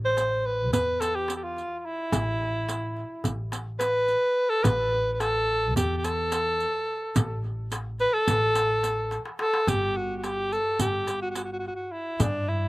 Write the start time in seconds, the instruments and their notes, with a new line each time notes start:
Already playing: upright bass A1
0.05 alto saxophone C5
0.17 riq, darbuka tek
0.45 alto saxophone B4, darbuka ka
0.72 upright bass E2, alto saxophone B4, riq, darbuka dum
1.01 alto saxophone A4, riq, darbuka tek
1.15 alto saxophone G4
1.28 riq, darbuka tek
1.36 alto saxophone G4
1.43 alto saxophone F4
1.57 riq, darbuka ka
1.79 alto saxophone F4
1.85 alto saxophone E4
2.12 upright bass A1, riq, darbuka dum
2.69 riq, darbuka tek
2.96 darbuka ka
3.24 upright bass A1, riq, darbuka dum
3.52 riq, darbuka tek
3.79 alto saxophone B4, riq, darbuka tek
4.08 riq, darbuka ka
4.50 alto saxophone A4
4.64 upright bass A1, alto saxophone B4, riq, darbuka dum
4.92 darbuka ka
5.13 alto saxophone B4
5.20 alto saxophone A4, riq, darbuka tek
5.49 darbuka ka
5.76 upright bass E2, alto saxophone G4, riq, darbuka dum
5.97 alto saxophone G4
6.04 alto saxophone A4, riq, darbuka tek
6.32 riq, darbuka tek
6.60 riq, darbuka ka
7.16 upright bass A1, riq, darbuka dum
7.44 darbuka ka
7.72 riq, darbuka tek
7.99 alto saxophone B4, riq, darbuka ka
8.14 alto saxophone A4
8.28 upright bass A1, riq, darbuka dum
8.55 riq, darbuka tek
8.83 riq, darbuka tek
9.11 riq, darbuka tek
9.26 darbuka ka
9.39 alto saxophone A4, darbuka tek
9.54 darbuka ka
9.67 upright bass G1, alto saxophone G4, riq, darbuka dum
9.97 alto saxophone F#4
10.17 alto saxophone F#4
10.24 alto saxophone G4, riq, darbuka tek
10.52 alto saxophone A4, riq, darbuka ka
10.79 upright bass G1, alto saxophone G4, riq, darbuka dum
11.07 riq, darbuka tek
11.22 alto saxophone F#4
11.31 alto saxophone F#4
11.35 alto saxophone F#4, riq, darbuka tek
11.44 alto saxophone F#4
11.53 alto saxophone F#4
11.59 alto saxophone F#4
11.68 alto saxophone F#4
11.75 alto saxophone F#4
11.92 alto saxophone E4
12.20 upright bass G2, alto saxophone D4, riq, darbuka dum
12.48 alto saxophone E4, darbuka ka